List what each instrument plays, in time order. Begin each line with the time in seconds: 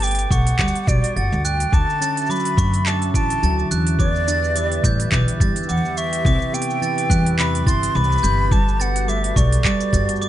Already playing: upright bass G1, nylon-string guitar G3 B3
0.00 nylon-string guitar A3, flute G5, glockenspiel D6, open hi-hat
0.03 open hi-hat, shaker
0.07 open hi-hat
0.11 open hi-hat
0.15 open hi-hat
0.19 open hi-hat, shaker
0.31 upright bass B1, nylon-string guitar A3, flute F#5, glockenspiel C#6, kick, shaker
0.47 open hi-hat, shaker
0.59 upright bass D2, nylon-string guitar G3, glockenspiel D6, kick, clap
0.68 shaker
0.76 open hi-hat, shaker
0.87 upright bass B1, nylon-string guitar F#4, flute D5, glockenspiel D7, kick, shaker
1.04 open hi-hat, shaker
1.16 upright bass G1, nylon-string guitar A3, flute F#5, glockenspiel A6, shaker
1.32 upright bass D2, shaker
1.45 flute G5, glockenspiel F#6, shaker
1.60 open hi-hat, shaker
1.72 upright bass D2, nylon-string guitar D3, analog synth pad D3 C#4 F#4 E5, flute A5, glockenspiel D6, kick, shaker
1.90 shaker
2.01 nylon-string guitar C#4, glockenspiel A6, shaker
2.17 open hi-hat, shaker
2.21 shaker
2.26 nylon-string guitar F#3, glockenspiel D6, shaker
2.31 flute B5, shaker
2.36 shaker
2.40 shaker
2.45 open hi-hat, shaker
2.57 upright bass F#2, nylon-string guitar A3, glockenspiel C#6, kick, shaker
2.74 open hi-hat, shaker
2.86 nylon-string guitar D3, flute A5, glockenspiel D6, clap, shaker
3.02 open hi-hat, shaker
3.14 upright bass A1, nylon-string guitar E4, flute A5, glockenspiel D7, kick, shaker
3.30 open hi-hat, shaker
3.43 upright bass D2, nylon-string guitar F#3, glockenspiel A6, shaker
3.59 shaker
3.71 upright bass E2, glockenspiel F#6, shaker
3.87 open hi-hat, shaker
3.99 nylon-string guitar E2, analog synth pad G4 B4 E5, flute D5, glockenspiel D6, kick, shaker
4.16 shaker
4.27 nylon-string guitar D4, glockenspiel A6, shaker
4.44 shaker
4.56 nylon-string guitar E3, glockenspiel D6, open hi-hat, shaker
4.72 open hi-hat, shaker
4.84 upright bass A2, nylon-string guitar G3, glockenspiel G6, kick, shaker
5.00 open hi-hat, shaker
5.12 upright bass B1, nylon-string guitar E2, glockenspiel D6, kick, clap, shaker
5.28 open hi-hat, shaker
5.40 upright bass G2, nylon-string guitar E4, glockenspiel A6, kick, shaker
5.56 open hi-hat, shaker
5.63 shaker
5.68 upright bass E2, nylon-string guitar E3, flute F#5, glockenspiel D6, shaker
5.77 shaker
5.85 shaker
5.97 flute E5, glockenspiel C#6, shaker
6.13 open hi-hat, shaker
6.25 upright bass C2, nylon-string guitar C3, analog synth pad E5, glockenspiel D6, kick, shaker
6.42 shaker
6.53 nylon-string guitar B3, flute G5, glockenspiel D7, shaker
6.62 open hi-hat
6.70 shaker
6.81 nylon-string guitar E3, glockenspiel A6, shaker
6.98 open hi-hat, shaker
7.10 upright bass E2, nylon-string guitar G3, glockenspiel F#6, kick, shaker
7.26 open hi-hat, shaker
7.38 nylon-string guitar C3, flute B5, glockenspiel D6, clap, shaker
7.55 open hi-hat, shaker
7.66 upright bass G1, nylon-string guitar E4, flute C6, glockenspiel A6, kick, shaker
7.83 open hi-hat, shaker
7.95 upright bass C2, nylon-string guitar E3, flute B5, glockenspiel D6, shaker
8.04 shaker
8.12 shaker
8.18 shaker
8.23 upright bass G1, glockenspiel G6, shaker
8.51 analog synth pad G3 F#4 A4, nylon-string guitar G3, flute A5, glockenspiel D6, kick, shaker
8.68 shaker
8.80 nylon-string guitar B3, flute F#5, glockenspiel A6, shaker
8.96 open hi-hat, shaker
9.08 nylon-string guitar A3, flute E5, glockenspiel D6, shaker
9.24 open hi-hat
9.36 upright bass B1, nylon-string guitar A3, flute D5, glockenspiel C#6, kick, shaker
9.53 open hi-hat, shaker
9.65 nylon-string guitar G3, glockenspiel D6, kick, clap, shaker
9.81 open hi-hat, shaker
9.93 upright bass G1, nylon-string guitar F#4, glockenspiel A6, kick, shaker
10.09 open hi-hat, shaker
10.16 shaker
10.21 nylon-string guitar A3, glockenspiel D6, shaker